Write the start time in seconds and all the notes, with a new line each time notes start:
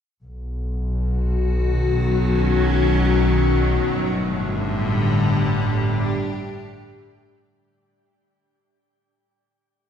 0.23 B1 B2
0.70 F#4
1.18 D#3
1.34 F#3
1.90 C#4
3.90 G1 A2
4.11 D3
4.22 G3
5.54 D4 G4